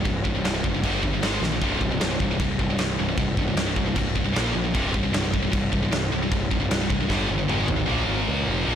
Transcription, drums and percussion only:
0.05 kick, crash
0.25 kick
0.45 snare, crash
0.64 kick
0.84 kick, crash
1.03 kick
1.23 snare, crash
1.43 snare
1.61 kick, crash
1.81 kick
2.01 snare, crash
2.20 kick
2.40 kick, crash
2.59 kick
2.78 snare, crash
3.17 kick, crash
3.37 kick
3.57 snare, crash
3.76 kick
3.96 kick, crash
4.16 kick
4.36 snare, crash
4.75 kick, crash
4.94 kick
5.14 snare, crash
5.34 kick
5.53 kick, crash
5.73 kick
5.92 snare, crash
6.32 kick, crash
6.51 kick
6.71 snare, crash
6.90 kick
7.10 kick, snare
7.49 mid tom
7.68 floor tom

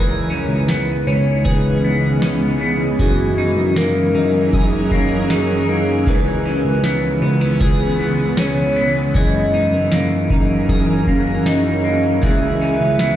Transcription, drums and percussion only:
0.68 snare, closed hi-hat
1.45 kick, closed hi-hat
2.22 snare, closed hi-hat
2.99 kick, closed hi-hat
3.76 snare, closed hi-hat
4.53 kick, closed hi-hat
4.91 kick
5.30 snare, closed hi-hat
6.07 kick, closed hi-hat
6.84 snare, closed hi-hat
7.61 kick, closed hi-hat
8.37 snare, closed hi-hat
9.15 kick, closed hi-hat
9.92 snare, closed hi-hat
10.30 kick
10.69 kick, closed hi-hat
11.07 kick
11.46 snare, closed hi-hat
12.23 kick, closed hi-hat
12.99 snare, closed hi-hat

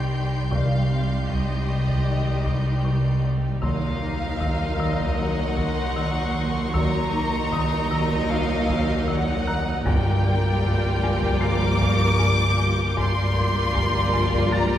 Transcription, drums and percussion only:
0.52 taiko
1.29 taiko
1.88 taiko
2.46 taiko
3.63 taiko
4.41 taiko
5.00 taiko
5.58 taiko
6.75 taiko
7.53 taiko
8.11 taiko
8.70 taiko
9.87 taiko
10.65 taiko
11.23 taiko
11.81 taiko
12.98 taiko
13.76 taiko
14.34 taiko

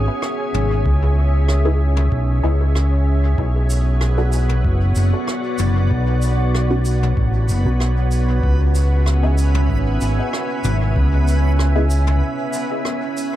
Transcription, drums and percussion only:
0.22 cross-stick
0.54 mid tom
0.86 kick
1.48 cross-stick
1.96 mid tom
2.12 kick
2.75 cross-stick
3.38 kick
3.70 shaker
4.01 cross-stick
4.32 shaker
4.49 mid tom
4.65 kick
4.95 shaker
5.27 cross-stick
5.58 mid tom, shaker
5.91 kick
6.22 shaker
6.55 cross-stick
6.85 shaker
7.03 mid tom
7.17 kick
7.49 shaker
7.80 cross-stick
8.11 shaker
8.44 kick
8.75 shaker
9.06 cross-stick
9.38 shaker
9.55 mid tom
9.70 kick
10.01 shaker
10.33 cross-stick
10.64 mid tom, shaker
10.96 kick
11.28 shaker
11.59 cross-stick
11.90 shaker
12.07 mid tom
12.53 shaker
12.85 cross-stick
13.17 shaker

